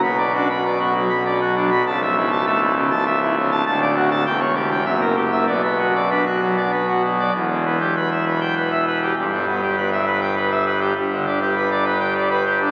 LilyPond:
<<
  \new Staff \with { instrumentName = "Pipe organ" } { \time 3/4 \key b \minor \tempo 4 = 100 << { b''16 d''16 fis'16 b''16 d''16 fis'16 fis16 b''16 d''16 fis'16 fis16 b''16 | a''16 e''16 e'16 a''16 e''16 e'16 cis16 a''16 e''16 e'16 cis16 a''16 | a''16 d''16 fis'16 a''16 g''16 cis''16 g'16 g''16 e''16 ais'16 g'16 e''16 | d''16 b'16 fis'16 d''16 b'16 fis'16 fis16 d''16 b'16 fis'16 fis16 d''16 |
\key e \minor r4. r16 g''16 r4 | r4. r16 g''16 r4 | r4. r16 g''16 r4 | } \\ { b,8 d'16 r16 b16 r4 r16 d'16 r16 | cis,4 a16 r4. r16 | d,4 e,4 fis,4 | b,4 d'16 r4. r16 |
e,16 b,16 b16 g'16 b'16 e''16 b'16 r16 b'16 e''16 b'16 g'16 | g,16 g16 b16 g'16 b'16 e''16 b'16 r16 b'16 e''16 b'16 g'16 | g,16 d16 d'16 g'16 b'16 d''16 b'16 r16 d''16 b'16 g'16 d'16 | } >> }
  \new Staff \with { instrumentName = "Pipe organ" } { \clef bass \time 3/4 \key b \minor b,,2. | cis,,2. | d,,4 e,,4 fis,,4 | b,,2. |
\key e \minor e,,2. | g,,2. | g,,2. | }
>>